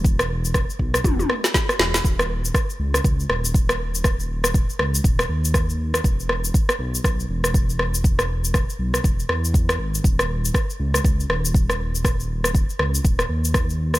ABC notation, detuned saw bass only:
X:1
M:4/4
L:1/8
Q:"Swing 16ths" 1/4=120
K:Dbdor
V:1 name="Detuned saw bass" clef=bass
=E,,,2 z =B,,, E,,, z2 E,,, | E,,,2 z D,, D,, E,,,3- | E,,,2 z D,, E,,, E,,3 | =E,,,2 z =B,,, B,,, E,,,3- |
=E,,,2 z =B,,, E,,, =E,,2 ^G,,, | E,,,2 z D,, D,, E,,,3- | E,,,2 z D,, E,,, E,,3 |]